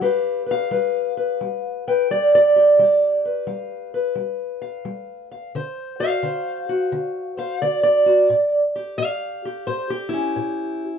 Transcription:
steel-string acoustic guitar
0.01 G3 G4 B4 F5
0.46 B4
0.51 F5
0.71 G3 B4
1.17 B4
1.41 G3
1.88 B4 G5
2.11 G3 D5
2.35 D5
2.56 G4
2.79 G3 G4
3.25 B4
3.47 G3 F5
3.94 B4
4.15 G3
4.62 F5
4.85 G3
5.32 F5
5.55 D3 C5
6.00 F#4 F5
6.23 D3 C5
6.69 F#4
6.92 D3
7.37 C5 F5
7.62 D3 D5
7.83 D5
8.06 F#4
8.30 A2
8.76 G4
8.98 A2 F5
9.45 G4
9.67 A2 C5
9.90 G4
10.09 E4
10.13 C#4
10.36 A2

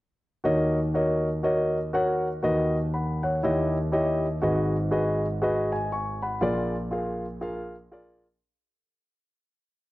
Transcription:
grand piano
0.44 D#2 D#3 F#4 A#4 C#5 D#5
0.94 F#4 A#4 C#5 D#5
1.43 F#4 A#4 C#5 D#5
1.93 F#4 A#4 C#5 F#5
2.43 D#2 D#3 F#4 A#4 B4 D#5
2.94 F#5 B5
3.23 C#5 F#5
3.43 D#2 D#3 E4 G4 C#5 D#5
3.92 E4 G4 C#5 D#5
4.42 G#1 G#2 F#4 G#4 B4 D#5
4.91 F#4 G#4 B4 D#5
5.42 F#4 G#4 B4 D#5
5.72 D#5 G#5
5.92 G#5 C#6
6.22 F#5 B5
6.41 A#1 A#2 F4 G#4 A#4 D5
6.91 F4 G#4 A#4 F5
7.41 F4 G#4 A#4 F5
7.92 F4 G#4 A#4 D5

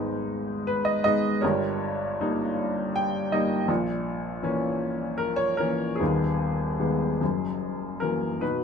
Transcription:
grand piano
Already playing: G#1 G#2 G#3 B3 D#4
0.67 B4
0.85 D#5
1.04 G#3 B3 D#4 D#5
1.41 G1 G2 G4 A#4 C#5
2.21 G3 A#3 D#4
2.96 G5
3.32 G3 A#3 D#4 D#5
3.68 A#1 A#2
4.43 E3 A#3 C#4
5.18 A#4
5.36 C#5
5.57 E3 A#3 C#4 A#4
5.95 B3 G#4
6.00 D#1 D#2 D#4
6.79 D#3 G#3 B3
7.21 F#1 F#2
8.00 E3 F#3 A#3 A#4
8.41 B2 D#4 F#4 B4

